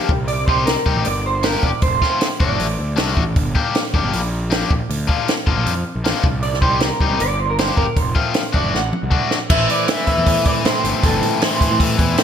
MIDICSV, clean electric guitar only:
0, 0, Header, 1, 2, 480
1, 0, Start_track
1, 0, Tempo, 383877
1, 353, Time_signature, 4, 2, 24, 8
1, 15297, End_track
2, 0, Start_track
2, 0, Title_t, "Clean electric guitar"
2, 0, Program_c, 0, 27
2, 0, Note_on_c, 0, 67, 77
2, 202, Note_off_c, 0, 67, 0
2, 345, Note_on_c, 0, 74, 95
2, 574, Note_off_c, 0, 74, 0
2, 579, Note_on_c, 0, 72, 88
2, 817, Note_off_c, 0, 72, 0
2, 822, Note_on_c, 0, 70, 80
2, 1317, Note_off_c, 0, 70, 0
2, 1322, Note_on_c, 0, 74, 93
2, 1543, Note_off_c, 0, 74, 0
2, 1576, Note_on_c, 0, 72, 88
2, 1808, Note_off_c, 0, 72, 0
2, 1813, Note_on_c, 0, 70, 78
2, 2052, Note_off_c, 0, 70, 0
2, 2058, Note_on_c, 0, 74, 79
2, 2274, Note_off_c, 0, 74, 0
2, 2279, Note_on_c, 0, 72, 98
2, 2607, Note_off_c, 0, 72, 0
2, 2622, Note_on_c, 0, 72, 70
2, 3002, Note_off_c, 0, 72, 0
2, 3010, Note_on_c, 0, 74, 74
2, 3916, Note_off_c, 0, 74, 0
2, 8036, Note_on_c, 0, 74, 92
2, 8262, Note_off_c, 0, 74, 0
2, 8267, Note_on_c, 0, 72, 77
2, 8521, Note_off_c, 0, 72, 0
2, 8526, Note_on_c, 0, 70, 68
2, 9010, Note_off_c, 0, 70, 0
2, 9015, Note_on_c, 0, 74, 95
2, 9250, Note_off_c, 0, 74, 0
2, 9250, Note_on_c, 0, 72, 89
2, 9369, Note_off_c, 0, 72, 0
2, 9375, Note_on_c, 0, 70, 73
2, 9487, Note_off_c, 0, 70, 0
2, 9492, Note_on_c, 0, 72, 78
2, 9706, Note_off_c, 0, 72, 0
2, 9711, Note_on_c, 0, 70, 72
2, 9969, Note_off_c, 0, 70, 0
2, 9969, Note_on_c, 0, 72, 102
2, 10694, Note_off_c, 0, 72, 0
2, 10699, Note_on_c, 0, 74, 80
2, 10937, Note_off_c, 0, 74, 0
2, 10956, Note_on_c, 0, 78, 93
2, 11608, Note_off_c, 0, 78, 0
2, 11886, Note_on_c, 0, 76, 109
2, 12129, Note_off_c, 0, 76, 0
2, 12139, Note_on_c, 0, 74, 101
2, 12376, Note_off_c, 0, 74, 0
2, 12376, Note_on_c, 0, 76, 99
2, 12580, Note_off_c, 0, 76, 0
2, 12595, Note_on_c, 0, 76, 92
2, 13079, Note_off_c, 0, 76, 0
2, 13084, Note_on_c, 0, 74, 97
2, 13148, Note_off_c, 0, 74, 0
2, 13322, Note_on_c, 0, 72, 88
2, 13812, Note_off_c, 0, 72, 0
2, 13822, Note_on_c, 0, 69, 93
2, 14301, Note_off_c, 0, 69, 0
2, 14316, Note_on_c, 0, 72, 70
2, 14741, Note_off_c, 0, 72, 0
2, 15297, End_track
0, 0, End_of_file